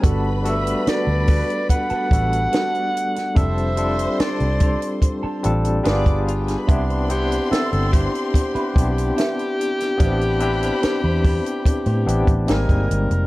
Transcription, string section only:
X:1
M:4/4
L:1/16
Q:1/4=72
K:G
V:1 name="String section"
[Bb]12- [Bb]2 z2 | [cc']8- [cc']2 z2 [dd']3/2 z/2 [=F=f]/2 [Gg]/2 [_A_a]/2 [Bb]/2 | [Cc']12- [Cc']2 z2 | [cb]8- [cb]2 z2 [_A,_a]2 z2 |]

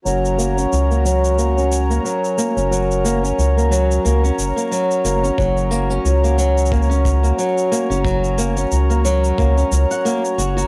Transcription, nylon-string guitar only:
X:1
M:4/4
L:1/16
Q:"Swing 16ths" 1/4=90
K:F#
V:1 name="Nylon-string guitar"
F,2 A, C2 A, F,2 A, C2 A, F,2 A, C | F,2 A, C2 A, F,2 A, C2 A, F,2 A, C | F,2 A, C2 A, F,2 A, C2 A, F,2 A, C | F,2 A, C2 A, F,2 A, C z f A, z F F |]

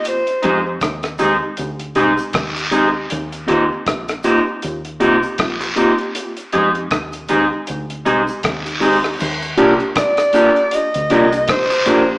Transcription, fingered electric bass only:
X:1
M:4/4
L:1/16
Q:"Swing 16ths" 1/4=79
K:Eb
V:1 name="Fingered electric bass" clef=bass
z2 F,,2 E,,2 E,, z D,,2 C,, z E,,4 | E,,2 E,, z B,,,2 z2 E,,2 C,, z B,,,2 z2 | z2 F,,2 E,,2 E,, z D,,2 C,, z E,,4 | E,,2 C,, z6 D,, C,,2 B,,,2 B,,,2 |]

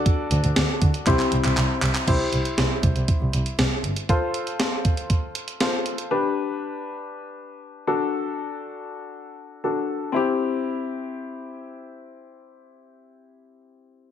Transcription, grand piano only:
X:1
M:4/4
L:1/8
Q:1/4=119
K:C
V:1 name="Grand piano"
[D^FAd]4 [CEGc]4 | [EGc]8 | [FAc]6 [FAc]2 | [DGB]6- [DGB] [D^FA]- |
[D^FA]6 [DFA]2 | [CEG]8- | [CEG]8 |]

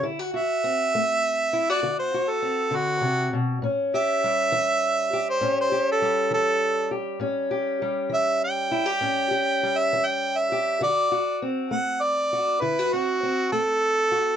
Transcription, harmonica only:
X:1
M:12/8
L:1/16
Q:3/8=67
K:Amix
V:1 name="Harmonica"
z2 e8- e d2 =c2 A3 F4 z2 | z2 e8- e =c2 c2 A3 A4 z2 | z6 e2 g8- g e2 g2 e3 | d4 z2 f2 d4 B2 F4 A6 |]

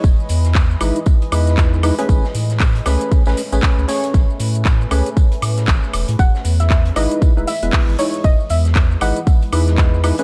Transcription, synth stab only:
X:1
M:4/4
L:1/16
Q:"Swing 16ths" 1/4=117
K:E
V:1 name="Synth stab"
z6 [G,DEB] z3 [G,DEB]4 [G,DEB] [A,CGB]- | [A,CGB] z4 z [A,CGB]3 [A,CGB] z [A,CGB]3 [A,CGc]2 | z6 [A,CGB] z8 z | z6 [G,DEB]3 [G,DEB] z [G,B,EB]3 [G,DEc]2 |
z6 [G,DEB] z3 [G,DEB]4 [G,DEB] [A,CGB] |]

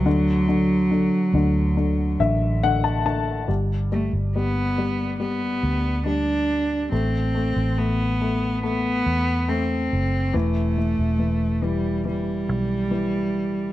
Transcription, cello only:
X:1
M:4/4
L:1/8
Q:1/4=70
K:G
V:1 name="Cello"
F,6 z2 | z A, B,2 B,2 D2 | C2 B,2 B,2 C2 | A,3 G, G,4 |]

